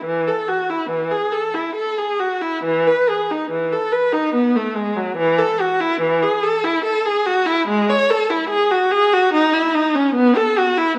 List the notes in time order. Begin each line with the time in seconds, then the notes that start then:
0.05 E3
0.27 A4
0.48 F#4
0.70 E4
0.90 E3
1.11 G#4
1.32 A4
1.54 E4
1.75 A4
1.98 G#4
2.19 F#4
2.42 E4
2.64 E3
2.87 B4
3.09 G#4
3.31 D#4
3.51 E3
3.72 A4
3.92 B4
4.13 D#4
4.35 B3
4.56 A3
4.75 G#3
4.96 F#3
5.17 E3
5.38 A4
5.60 F#4
5.81 E4
6.01 E3
6.22 G#4
6.43 A4
6.64 E4
6.84 A4
7.05 G#4
7.26 F#4
7.46 E4
7.68 G#3
7.90 C#5
8.10 A4
8.30 E4
8.49 G#4
8.71 F#4
8.91 G#4
9.13 F#4
9.34 D#4
9.53 E4
9.74 D#4
9.95 C#4
10.15 B3
10.36 A4
10.58 F#4
10.77 E4